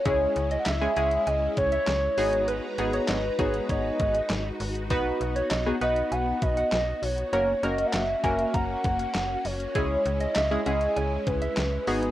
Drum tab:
HH |x-xxx-xxx-xxx-ox|x-xxx-xxx-xxx-ox|x-xxx-xxx-xxx-ox|x-xxx-xxx-xxx-ox|
CP |----x-------x---|----x-------x---|----x-------x---|----x-------x---|
SD |----o-------o---|----o-------o---|----o-------o---|----o-------o---|
BD |o---------o-----|------o-o-o-----|o---------o-----|------o-o-o-----|

HH |x-xxx-xxx-xxx-ox|
CP |----x-------x---|
SD |----o-------o---|
BD |o---------o-----|